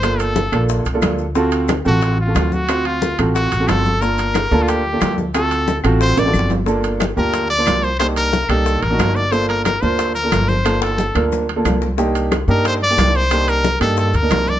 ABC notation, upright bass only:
X:1
M:4/4
L:1/8
Q:1/4=181
K:Gm
V:1 name="Upright bass" clef=bass
G,,,3 B,,,2 C,, D,,2- | D,,3 A,,,3 D,,2- | D,,3 A,,,2 A,,, G,,,2- | G,,,3 D,,3 D,,2- |
D,,3 A,,,2 A,,, G,,,2- | G,,,3 D,,3 C,,2- | C,,3 C,,2 A,,, G,,,2- | G,,,3 D,,3 G,,,2- |
G,,,3 D,,3 C,,2- | C,,3 G,,3 C,,2- | C,,3 G,,2 D,, C,,2 |]